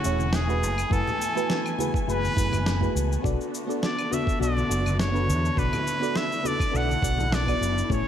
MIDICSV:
0, 0, Header, 1, 6, 480
1, 0, Start_track
1, 0, Tempo, 582524
1, 754, Time_signature, 4, 2, 24, 8
1, 6657, End_track
2, 0, Start_track
2, 0, Title_t, "Muted trumpet"
2, 0, Program_c, 0, 59
2, 0, Note_on_c, 0, 66, 96
2, 288, Note_on_c, 0, 68, 105
2, 300, Note_off_c, 0, 66, 0
2, 763, Note_on_c, 0, 69, 95
2, 776, Note_off_c, 0, 68, 0
2, 1479, Note_off_c, 0, 69, 0
2, 1725, Note_on_c, 0, 71, 110
2, 2406, Note_off_c, 0, 71, 0
2, 3168, Note_on_c, 0, 74, 97
2, 3404, Note_on_c, 0, 76, 99
2, 3416, Note_off_c, 0, 74, 0
2, 3632, Note_off_c, 0, 76, 0
2, 3637, Note_on_c, 0, 74, 91
2, 4082, Note_off_c, 0, 74, 0
2, 4121, Note_on_c, 0, 73, 94
2, 4603, Note_on_c, 0, 71, 105
2, 4616, Note_off_c, 0, 73, 0
2, 5082, Note_on_c, 0, 76, 111
2, 5095, Note_off_c, 0, 71, 0
2, 5330, Note_on_c, 0, 74, 101
2, 5342, Note_off_c, 0, 76, 0
2, 5573, Note_on_c, 0, 78, 110
2, 5586, Note_off_c, 0, 74, 0
2, 6050, Note_on_c, 0, 74, 105
2, 6062, Note_off_c, 0, 78, 0
2, 6522, Note_off_c, 0, 74, 0
2, 6532, Note_on_c, 0, 73, 107
2, 6657, Note_off_c, 0, 73, 0
2, 6657, End_track
3, 0, Start_track
3, 0, Title_t, "FM electric piano"
3, 0, Program_c, 1, 5
3, 30, Note_on_c, 1, 57, 74
3, 33, Note_on_c, 1, 61, 69
3, 39, Note_on_c, 1, 64, 67
3, 43, Note_on_c, 1, 68, 66
3, 49, Note_on_c, 1, 73, 88
3, 210, Note_off_c, 1, 57, 0
3, 212, Note_off_c, 1, 61, 0
3, 215, Note_off_c, 1, 64, 0
3, 217, Note_off_c, 1, 68, 0
3, 220, Note_off_c, 1, 73, 0
3, 394, Note_on_c, 1, 57, 82
3, 394, Note_on_c, 1, 64, 84
3, 404, Note_on_c, 1, 66, 78
3, 404, Note_on_c, 1, 68, 81
3, 412, Note_on_c, 1, 71, 97
3, 723, Note_off_c, 1, 57, 0
3, 723, Note_off_c, 1, 64, 0
3, 728, Note_off_c, 1, 66, 0
3, 728, Note_off_c, 1, 68, 0
3, 732, Note_off_c, 1, 71, 0
3, 737, Note_on_c, 1, 57, 88
3, 743, Note_on_c, 1, 64, 83
3, 749, Note_on_c, 1, 66, 80
3, 756, Note_on_c, 1, 80, 80
3, 760, Note_on_c, 1, 71, 96
3, 1083, Note_off_c, 1, 57, 0
3, 1086, Note_off_c, 1, 64, 0
3, 1089, Note_off_c, 1, 66, 0
3, 1092, Note_off_c, 1, 80, 0
3, 1094, Note_off_c, 1, 71, 0
3, 1111, Note_on_c, 1, 57, 85
3, 1114, Note_on_c, 1, 64, 74
3, 1122, Note_on_c, 1, 66, 77
3, 1122, Note_on_c, 1, 80, 76
3, 1128, Note_on_c, 1, 71, 95
3, 1441, Note_off_c, 1, 57, 0
3, 1443, Note_off_c, 1, 64, 0
3, 1447, Note_off_c, 1, 66, 0
3, 1447, Note_off_c, 1, 80, 0
3, 1450, Note_off_c, 1, 71, 0
3, 1464, Note_on_c, 1, 57, 88
3, 1468, Note_on_c, 1, 64, 84
3, 1475, Note_on_c, 1, 66, 77
3, 1477, Note_on_c, 1, 68, 77
3, 1485, Note_on_c, 1, 71, 95
3, 1682, Note_off_c, 1, 57, 0
3, 1684, Note_off_c, 1, 64, 0
3, 1688, Note_off_c, 1, 66, 0
3, 1689, Note_off_c, 1, 68, 0
3, 1692, Note_off_c, 1, 71, 0
3, 1705, Note_on_c, 1, 57, 82
3, 1711, Note_on_c, 1, 64, 77
3, 1716, Note_on_c, 1, 66, 77
3, 1719, Note_on_c, 1, 68, 79
3, 1723, Note_on_c, 1, 71, 96
3, 1922, Note_off_c, 1, 57, 0
3, 1926, Note_off_c, 1, 64, 0
3, 1928, Note_off_c, 1, 66, 0
3, 1930, Note_off_c, 1, 68, 0
3, 1932, Note_off_c, 1, 71, 0
3, 1944, Note_on_c, 1, 57, 74
3, 1949, Note_on_c, 1, 64, 70
3, 1954, Note_on_c, 1, 66, 68
3, 1959, Note_on_c, 1, 68, 68
3, 1963, Note_on_c, 1, 71, 81
3, 2127, Note_off_c, 1, 57, 0
3, 2130, Note_off_c, 1, 64, 0
3, 2132, Note_off_c, 1, 66, 0
3, 2135, Note_off_c, 1, 68, 0
3, 2137, Note_off_c, 1, 71, 0
3, 2312, Note_on_c, 1, 57, 86
3, 2314, Note_on_c, 1, 64, 81
3, 2317, Note_on_c, 1, 66, 77
3, 2324, Note_on_c, 1, 68, 73
3, 2330, Note_on_c, 1, 71, 94
3, 2642, Note_off_c, 1, 57, 0
3, 2643, Note_off_c, 1, 64, 0
3, 2645, Note_off_c, 1, 66, 0
3, 2648, Note_off_c, 1, 68, 0
3, 2651, Note_off_c, 1, 71, 0
3, 2656, Note_on_c, 1, 59, 86
3, 2662, Note_on_c, 1, 62, 73
3, 2666, Note_on_c, 1, 66, 80
3, 2671, Note_on_c, 1, 69, 82
3, 2676, Note_on_c, 1, 74, 99
3, 3002, Note_off_c, 1, 59, 0
3, 3005, Note_off_c, 1, 62, 0
3, 3007, Note_off_c, 1, 66, 0
3, 3010, Note_off_c, 1, 69, 0
3, 3012, Note_off_c, 1, 74, 0
3, 3025, Note_on_c, 1, 59, 87
3, 3032, Note_on_c, 1, 62, 73
3, 3036, Note_on_c, 1, 66, 71
3, 3040, Note_on_c, 1, 69, 77
3, 3044, Note_on_c, 1, 74, 87
3, 3358, Note_off_c, 1, 59, 0
3, 3362, Note_off_c, 1, 62, 0
3, 3364, Note_off_c, 1, 66, 0
3, 3366, Note_off_c, 1, 69, 0
3, 3368, Note_off_c, 1, 74, 0
3, 3383, Note_on_c, 1, 59, 84
3, 3390, Note_on_c, 1, 62, 78
3, 3392, Note_on_c, 1, 66, 81
3, 3401, Note_on_c, 1, 69, 75
3, 3405, Note_on_c, 1, 74, 92
3, 3601, Note_off_c, 1, 59, 0
3, 3605, Note_off_c, 1, 62, 0
3, 3606, Note_off_c, 1, 66, 0
3, 3610, Note_off_c, 1, 69, 0
3, 3612, Note_off_c, 1, 74, 0
3, 3620, Note_on_c, 1, 59, 87
3, 3623, Note_on_c, 1, 62, 77
3, 3627, Note_on_c, 1, 66, 77
3, 3633, Note_on_c, 1, 69, 80
3, 3638, Note_on_c, 1, 74, 94
3, 3840, Note_off_c, 1, 59, 0
3, 3842, Note_off_c, 1, 62, 0
3, 3843, Note_off_c, 1, 66, 0
3, 3847, Note_off_c, 1, 69, 0
3, 3849, Note_off_c, 1, 74, 0
3, 3849, Note_on_c, 1, 59, 72
3, 3857, Note_on_c, 1, 62, 69
3, 3862, Note_on_c, 1, 66, 72
3, 3867, Note_on_c, 1, 69, 72
3, 3872, Note_on_c, 1, 74, 86
3, 4040, Note_off_c, 1, 59, 0
3, 4044, Note_off_c, 1, 62, 0
3, 4047, Note_off_c, 1, 66, 0
3, 4049, Note_off_c, 1, 69, 0
3, 4051, Note_off_c, 1, 74, 0
3, 4221, Note_on_c, 1, 59, 88
3, 4225, Note_on_c, 1, 62, 78
3, 4233, Note_on_c, 1, 66, 78
3, 4236, Note_on_c, 1, 69, 81
3, 4240, Note_on_c, 1, 71, 96
3, 4556, Note_off_c, 1, 59, 0
3, 4559, Note_off_c, 1, 62, 0
3, 4562, Note_off_c, 1, 66, 0
3, 4564, Note_off_c, 1, 69, 0
3, 4566, Note_off_c, 1, 71, 0
3, 4585, Note_on_c, 1, 59, 89
3, 4591, Note_on_c, 1, 62, 79
3, 4597, Note_on_c, 1, 66, 79
3, 4603, Note_on_c, 1, 69, 78
3, 4606, Note_on_c, 1, 74, 97
3, 4927, Note_off_c, 1, 59, 0
3, 4930, Note_off_c, 1, 62, 0
3, 4933, Note_off_c, 1, 66, 0
3, 4936, Note_off_c, 1, 69, 0
3, 4937, Note_off_c, 1, 74, 0
3, 4944, Note_on_c, 1, 59, 82
3, 4951, Note_on_c, 1, 62, 74
3, 4955, Note_on_c, 1, 66, 74
3, 4959, Note_on_c, 1, 69, 78
3, 4966, Note_on_c, 1, 74, 92
3, 5278, Note_off_c, 1, 59, 0
3, 5282, Note_off_c, 1, 62, 0
3, 5283, Note_off_c, 1, 66, 0
3, 5285, Note_off_c, 1, 69, 0
3, 5289, Note_off_c, 1, 74, 0
3, 5298, Note_on_c, 1, 59, 84
3, 5307, Note_on_c, 1, 62, 77
3, 5310, Note_on_c, 1, 66, 75
3, 5315, Note_on_c, 1, 69, 81
3, 5319, Note_on_c, 1, 74, 95
3, 5519, Note_off_c, 1, 59, 0
3, 5523, Note_off_c, 1, 62, 0
3, 5525, Note_off_c, 1, 66, 0
3, 5527, Note_off_c, 1, 69, 0
3, 5530, Note_off_c, 1, 74, 0
3, 5532, Note_on_c, 1, 59, 85
3, 5534, Note_on_c, 1, 62, 76
3, 5543, Note_on_c, 1, 66, 78
3, 5549, Note_on_c, 1, 69, 82
3, 5551, Note_on_c, 1, 74, 90
3, 5756, Note_off_c, 1, 59, 0
3, 5757, Note_off_c, 1, 62, 0
3, 5762, Note_off_c, 1, 66, 0
3, 5765, Note_off_c, 1, 69, 0
3, 5766, Note_off_c, 1, 74, 0
3, 5781, Note_on_c, 1, 59, 77
3, 5787, Note_on_c, 1, 62, 71
3, 5792, Note_on_c, 1, 66, 72
3, 5794, Note_on_c, 1, 69, 71
3, 5800, Note_on_c, 1, 74, 86
3, 5966, Note_off_c, 1, 59, 0
3, 5969, Note_off_c, 1, 62, 0
3, 5971, Note_off_c, 1, 66, 0
3, 5972, Note_off_c, 1, 69, 0
3, 5975, Note_off_c, 1, 74, 0
3, 6153, Note_on_c, 1, 59, 90
3, 6157, Note_on_c, 1, 62, 76
3, 6163, Note_on_c, 1, 66, 81
3, 6168, Note_on_c, 1, 69, 74
3, 6171, Note_on_c, 1, 74, 97
3, 6482, Note_off_c, 1, 59, 0
3, 6484, Note_off_c, 1, 62, 0
3, 6487, Note_off_c, 1, 66, 0
3, 6490, Note_off_c, 1, 69, 0
3, 6491, Note_off_c, 1, 74, 0
3, 6502, Note_on_c, 1, 57, 85
3, 6506, Note_on_c, 1, 61, 80
3, 6511, Note_on_c, 1, 64, 75
3, 6516, Note_on_c, 1, 68, 83
3, 6519, Note_on_c, 1, 73, 101
3, 6657, Note_off_c, 1, 57, 0
3, 6657, Note_off_c, 1, 61, 0
3, 6657, Note_off_c, 1, 64, 0
3, 6657, Note_off_c, 1, 68, 0
3, 6657, Note_off_c, 1, 73, 0
3, 6657, End_track
4, 0, Start_track
4, 0, Title_t, "String section"
4, 0, Program_c, 2, 48
4, 0, Note_on_c, 2, 49, 80
4, 0, Note_on_c, 2, 57, 72
4, 0, Note_on_c, 2, 64, 87
4, 0, Note_on_c, 2, 80, 69
4, 481, Note_off_c, 2, 64, 0
4, 489, Note_off_c, 2, 57, 0
4, 492, Note_off_c, 2, 80, 0
4, 494, Note_off_c, 2, 49, 0
4, 499, Note_on_c, 2, 57, 71
4, 500, Note_on_c, 2, 52, 77
4, 501, Note_on_c, 2, 59, 73
4, 502, Note_on_c, 2, 80, 83
4, 2645, Note_off_c, 2, 52, 0
4, 2646, Note_off_c, 2, 80, 0
4, 2671, Note_on_c, 2, 50, 76
4, 2671, Note_on_c, 2, 66, 83
4, 4573, Note_off_c, 2, 66, 0
4, 4595, Note_on_c, 2, 64, 86
4, 6475, Note_off_c, 2, 59, 0
4, 6479, Note_off_c, 2, 50, 0
4, 6513, Note_on_c, 2, 68, 72
4, 6517, Note_on_c, 2, 49, 79
4, 6657, Note_off_c, 2, 49, 0
4, 6657, Note_off_c, 2, 57, 0
4, 6657, Note_off_c, 2, 64, 0
4, 6657, Note_off_c, 2, 68, 0
4, 6657, End_track
5, 0, Start_track
5, 0, Title_t, "Fingered electric bass"
5, 0, Program_c, 3, 33
5, 38, Note_on_c, 3, 28, 81
5, 521, Note_off_c, 3, 28, 0
5, 521, Note_on_c, 3, 30, 81
5, 682, Note_off_c, 3, 30, 0
5, 749, Note_on_c, 3, 30, 91
5, 836, Note_off_c, 3, 30, 0
5, 1711, Note_on_c, 3, 30, 82
5, 1877, Note_off_c, 3, 30, 0
5, 1950, Note_on_c, 3, 30, 84
5, 2371, Note_off_c, 3, 30, 0
5, 2433, Note_on_c, 3, 37, 85
5, 2598, Note_off_c, 3, 37, 0
5, 2672, Note_on_c, 3, 35, 95
5, 2758, Note_off_c, 3, 35, 0
5, 3629, Note_on_c, 3, 35, 91
5, 3796, Note_off_c, 3, 35, 0
5, 3870, Note_on_c, 3, 30, 86
5, 4358, Note_on_c, 3, 40, 81
5, 4371, Note_off_c, 3, 30, 0
5, 4520, Note_off_c, 3, 40, 0
5, 4588, Note_on_c, 3, 35, 102
5, 4676, Note_off_c, 3, 35, 0
5, 5555, Note_on_c, 3, 35, 83
5, 5719, Note_off_c, 3, 35, 0
5, 5787, Note_on_c, 3, 35, 89
5, 6210, Note_off_c, 3, 35, 0
5, 6269, Note_on_c, 3, 30, 86
5, 6435, Note_off_c, 3, 30, 0
5, 6507, Note_on_c, 3, 33, 99
5, 6595, Note_off_c, 3, 33, 0
5, 6657, End_track
6, 0, Start_track
6, 0, Title_t, "Drums"
6, 35, Note_on_c, 9, 69, 85
6, 118, Note_off_c, 9, 69, 0
6, 153, Note_on_c, 9, 63, 72
6, 165, Note_on_c, 9, 69, 33
6, 235, Note_off_c, 9, 63, 0
6, 247, Note_off_c, 9, 69, 0
6, 269, Note_on_c, 9, 38, 100
6, 277, Note_on_c, 9, 69, 49
6, 352, Note_off_c, 9, 38, 0
6, 360, Note_off_c, 9, 69, 0
6, 407, Note_on_c, 9, 69, 25
6, 489, Note_off_c, 9, 69, 0
6, 521, Note_on_c, 9, 69, 82
6, 604, Note_off_c, 9, 69, 0
6, 642, Note_on_c, 9, 75, 74
6, 650, Note_on_c, 9, 69, 36
6, 725, Note_off_c, 9, 75, 0
6, 733, Note_off_c, 9, 69, 0
6, 750, Note_on_c, 9, 36, 113
6, 764, Note_on_c, 9, 69, 48
6, 832, Note_off_c, 9, 36, 0
6, 846, Note_off_c, 9, 69, 0
6, 885, Note_on_c, 9, 64, 85
6, 892, Note_on_c, 9, 69, 21
6, 968, Note_off_c, 9, 64, 0
6, 975, Note_off_c, 9, 69, 0
6, 1001, Note_on_c, 9, 69, 79
6, 1084, Note_off_c, 9, 69, 0
6, 1130, Note_on_c, 9, 69, 35
6, 1213, Note_off_c, 9, 69, 0
6, 1234, Note_on_c, 9, 38, 100
6, 1242, Note_on_c, 9, 69, 46
6, 1317, Note_off_c, 9, 38, 0
6, 1325, Note_off_c, 9, 69, 0
6, 1365, Note_on_c, 9, 75, 70
6, 1373, Note_on_c, 9, 69, 22
6, 1448, Note_off_c, 9, 75, 0
6, 1456, Note_off_c, 9, 69, 0
6, 1472, Note_on_c, 9, 63, 62
6, 1485, Note_on_c, 9, 69, 75
6, 1555, Note_off_c, 9, 63, 0
6, 1567, Note_off_c, 9, 69, 0
6, 1599, Note_on_c, 9, 36, 110
6, 1615, Note_on_c, 9, 69, 35
6, 1681, Note_off_c, 9, 36, 0
6, 1697, Note_off_c, 9, 69, 0
6, 1724, Note_on_c, 9, 69, 42
6, 1807, Note_off_c, 9, 69, 0
6, 1842, Note_on_c, 9, 63, 63
6, 1851, Note_on_c, 9, 69, 24
6, 1924, Note_off_c, 9, 63, 0
6, 1934, Note_off_c, 9, 69, 0
6, 1951, Note_on_c, 9, 36, 115
6, 1961, Note_on_c, 9, 69, 78
6, 2033, Note_off_c, 9, 36, 0
6, 2043, Note_off_c, 9, 69, 0
6, 2079, Note_on_c, 9, 64, 88
6, 2081, Note_on_c, 9, 63, 71
6, 2083, Note_on_c, 9, 75, 73
6, 2092, Note_on_c, 9, 69, 34
6, 2161, Note_off_c, 9, 64, 0
6, 2163, Note_off_c, 9, 63, 0
6, 2166, Note_off_c, 9, 75, 0
6, 2174, Note_off_c, 9, 69, 0
6, 2195, Note_on_c, 9, 38, 105
6, 2203, Note_on_c, 9, 69, 48
6, 2277, Note_off_c, 9, 38, 0
6, 2286, Note_off_c, 9, 69, 0
6, 2319, Note_on_c, 9, 36, 64
6, 2332, Note_on_c, 9, 69, 24
6, 2401, Note_off_c, 9, 36, 0
6, 2415, Note_off_c, 9, 69, 0
6, 2444, Note_on_c, 9, 69, 88
6, 2526, Note_off_c, 9, 69, 0
6, 2574, Note_on_c, 9, 69, 35
6, 2656, Note_off_c, 9, 69, 0
6, 2672, Note_on_c, 9, 36, 110
6, 2683, Note_on_c, 9, 69, 47
6, 2754, Note_off_c, 9, 36, 0
6, 2765, Note_off_c, 9, 69, 0
6, 2810, Note_on_c, 9, 69, 23
6, 2892, Note_off_c, 9, 69, 0
6, 2921, Note_on_c, 9, 69, 75
6, 3003, Note_off_c, 9, 69, 0
6, 3051, Note_on_c, 9, 69, 35
6, 3134, Note_off_c, 9, 69, 0
6, 3156, Note_on_c, 9, 38, 86
6, 3164, Note_on_c, 9, 69, 41
6, 3238, Note_off_c, 9, 38, 0
6, 3246, Note_off_c, 9, 69, 0
6, 3284, Note_on_c, 9, 75, 78
6, 3292, Note_on_c, 9, 69, 22
6, 3367, Note_off_c, 9, 75, 0
6, 3375, Note_off_c, 9, 69, 0
6, 3399, Note_on_c, 9, 63, 64
6, 3401, Note_on_c, 9, 69, 73
6, 3481, Note_off_c, 9, 63, 0
6, 3484, Note_off_c, 9, 69, 0
6, 3520, Note_on_c, 9, 36, 105
6, 3534, Note_on_c, 9, 69, 34
6, 3602, Note_off_c, 9, 36, 0
6, 3617, Note_off_c, 9, 69, 0
6, 3647, Note_on_c, 9, 69, 42
6, 3729, Note_off_c, 9, 69, 0
6, 3765, Note_on_c, 9, 63, 59
6, 3774, Note_on_c, 9, 69, 23
6, 3847, Note_off_c, 9, 63, 0
6, 3856, Note_off_c, 9, 69, 0
6, 3883, Note_on_c, 9, 69, 81
6, 3965, Note_off_c, 9, 69, 0
6, 4001, Note_on_c, 9, 63, 61
6, 4006, Note_on_c, 9, 75, 70
6, 4015, Note_on_c, 9, 69, 33
6, 4083, Note_off_c, 9, 63, 0
6, 4089, Note_off_c, 9, 75, 0
6, 4097, Note_off_c, 9, 69, 0
6, 4116, Note_on_c, 9, 38, 93
6, 4124, Note_on_c, 9, 69, 49
6, 4198, Note_off_c, 9, 38, 0
6, 4206, Note_off_c, 9, 69, 0
6, 4251, Note_on_c, 9, 69, 22
6, 4333, Note_off_c, 9, 69, 0
6, 4365, Note_on_c, 9, 69, 80
6, 4447, Note_off_c, 9, 69, 0
6, 4492, Note_on_c, 9, 69, 34
6, 4575, Note_off_c, 9, 69, 0
6, 4591, Note_on_c, 9, 36, 110
6, 4600, Note_on_c, 9, 69, 43
6, 4674, Note_off_c, 9, 36, 0
6, 4682, Note_off_c, 9, 69, 0
6, 4720, Note_on_c, 9, 64, 85
6, 4722, Note_on_c, 9, 75, 75
6, 4730, Note_on_c, 9, 69, 20
6, 4803, Note_off_c, 9, 64, 0
6, 4804, Note_off_c, 9, 75, 0
6, 4813, Note_off_c, 9, 69, 0
6, 4839, Note_on_c, 9, 69, 75
6, 4921, Note_off_c, 9, 69, 0
6, 4969, Note_on_c, 9, 69, 32
6, 5051, Note_off_c, 9, 69, 0
6, 5072, Note_on_c, 9, 38, 90
6, 5080, Note_on_c, 9, 69, 43
6, 5155, Note_off_c, 9, 38, 0
6, 5163, Note_off_c, 9, 69, 0
6, 5209, Note_on_c, 9, 69, 21
6, 5291, Note_off_c, 9, 69, 0
6, 5315, Note_on_c, 9, 63, 67
6, 5319, Note_on_c, 9, 69, 71
6, 5397, Note_off_c, 9, 63, 0
6, 5402, Note_off_c, 9, 69, 0
6, 5438, Note_on_c, 9, 36, 100
6, 5441, Note_on_c, 9, 75, 73
6, 5449, Note_on_c, 9, 69, 34
6, 5520, Note_off_c, 9, 36, 0
6, 5524, Note_off_c, 9, 75, 0
6, 5532, Note_off_c, 9, 69, 0
6, 5562, Note_on_c, 9, 69, 42
6, 5644, Note_off_c, 9, 69, 0
6, 5681, Note_on_c, 9, 63, 67
6, 5694, Note_on_c, 9, 69, 21
6, 5763, Note_off_c, 9, 63, 0
6, 5776, Note_off_c, 9, 69, 0
6, 5788, Note_on_c, 9, 36, 105
6, 5802, Note_on_c, 9, 69, 77
6, 5871, Note_off_c, 9, 36, 0
6, 5885, Note_off_c, 9, 69, 0
6, 5913, Note_on_c, 9, 63, 62
6, 5914, Note_on_c, 9, 64, 82
6, 5932, Note_on_c, 9, 69, 33
6, 5995, Note_off_c, 9, 63, 0
6, 5996, Note_off_c, 9, 64, 0
6, 6015, Note_off_c, 9, 69, 0
6, 6035, Note_on_c, 9, 38, 102
6, 6043, Note_on_c, 9, 69, 46
6, 6118, Note_off_c, 9, 38, 0
6, 6126, Note_off_c, 9, 69, 0
6, 6157, Note_on_c, 9, 36, 61
6, 6165, Note_on_c, 9, 75, 82
6, 6173, Note_on_c, 9, 69, 23
6, 6240, Note_off_c, 9, 36, 0
6, 6247, Note_off_c, 9, 75, 0
6, 6255, Note_off_c, 9, 69, 0
6, 6284, Note_on_c, 9, 69, 83
6, 6367, Note_off_c, 9, 69, 0
6, 6410, Note_on_c, 9, 69, 33
6, 6493, Note_off_c, 9, 69, 0
6, 6509, Note_on_c, 9, 36, 111
6, 6523, Note_on_c, 9, 69, 46
6, 6591, Note_off_c, 9, 36, 0
6, 6605, Note_off_c, 9, 69, 0
6, 6657, End_track
0, 0, End_of_file